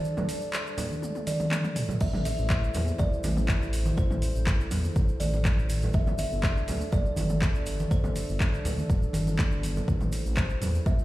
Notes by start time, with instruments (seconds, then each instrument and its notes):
Already playing: analog synth pad G3 D4 A4 D5, kalimba D5
0.04 high conga, shaker
0.17 mid tom, low conga, shaker
0.29 open hi-hat, shaker
0.42 shaker
0.53 clap, shaker
0.67 shaker
0.78 open hi-hat, low conga, shaker
0.91 high conga, shaker
1.02 high tom, shaker
1.15 high tom, shaker
1.27 kalimba D5, open hi-hat, high conga, shaker
1.40 mid tom, high conga, shaker
1.51 clap, mid tom, shaker
1.64 mid tom, shaker
1.76 mid tom, open hi-hat, high conga, shaker
1.89 mid tom, low conga, shaker
2.01 detuned saw bass A1, analog synth pad E4 A4 C5, kalimba E5, kick, crash, high conga, shaker
2.14 mid tom, low conga, shaker
2.25 kalimba E5, open hi-hat, shaker
2.38 detuned saw bass A1, shaker
2.49 kick, clap, shaker
2.64 shaker
2.74 detuned saw bass E2, open hi-hat, low conga, shaker
2.88 shaker
2.98 detuned saw bass A1, kalimba D5, kick, low conga, shaker
3.13 shaker
3.24 detuned saw bass A1, open hi-hat, high conga, low conga, shaker
3.37 mid tom, shaker
3.48 kick, clap, shaker
3.61 detuned saw bass A1, shaker
3.73 open hi-hat, shaker
3.86 high conga, shaker
3.97 detuned saw bass A1, kalimba C5, kick, high conga, shaker
4.11 mid tom, low conga, shaker
4.22 open hi-hat, shaker
4.35 detuned saw bass A1, shaker
4.47 kick, clap, shaker
4.61 shaker
4.71 detuned saw bass E2, open hi-hat, low conga, shaker
4.84 high conga, shaker
4.96 detuned saw bass A1, kick, shaker
5.08 shaker
5.20 detuned saw bass A1, kalimba D5, open hi-hat, high conga, shaker
5.33 high conga, shaker
5.45 kick, clap, mid tom, shaker
5.58 detuned saw bass A1, shaker
5.70 open hi-hat, high conga, shaker
5.82 low conga, shaker
5.93 detuned saw bass G1, analog synth pad G3 D4 D5, kalimba E5, kick, high conga, shaker
6.07 mid tom, low conga, shaker
6.18 kalimba E5, open hi-hat, shaker
6.32 detuned saw bass G1, shaker
6.43 kick, clap, shaker
6.57 shaker
6.68 detuned saw bass D2, open hi-hat, low conga, shaker
6.81 shaker
6.92 detuned saw bass G1, kalimba D5, kick, low conga, shaker
7.05 shaker
7.16 detuned saw bass G1, open hi-hat, high conga, low conga, shaker
7.29 mid tom, shaker
7.42 kick, clap, shaker
7.55 detuned saw bass G1, shaker
7.66 open hi-hat, shaker
7.79 high conga, shaker
7.91 detuned saw bass G1, kalimba C5, kick, high conga, shaker
8.04 mid tom, low conga, shaker
8.16 open hi-hat, shaker
8.29 detuned saw bass G1, shaker
8.40 kick, clap, shaker
8.54 shaker
8.65 detuned saw bass D2, open hi-hat, low conga, shaker
8.78 high conga, shaker
8.90 detuned saw bass D1, kick, shaker
9.03 shaker
9.13 detuned saw bass G1, open hi-hat, high conga, shaker
9.27 high conga, shaker
9.39 kick, clap, mid tom, shaker
9.52 detuned saw bass G1, shaker
9.63 open hi-hat, high conga, shaker
9.77 low conga, shaker
9.88 detuned saw bass A1, analog synth pad E4 C5, kick, high conga, shaker
10.01 mid tom, low conga, shaker
10.12 open hi-hat, shaker
10.25 detuned saw bass A1, shaker
10.36 kalimba C5, kick, clap, shaker
10.50 shaker
10.62 detuned saw bass E2, open hi-hat, low conga, shaker
10.75 shaker
10.86 detuned saw bass A1, kalimba E5, kick, low conga, shaker
10.99 shaker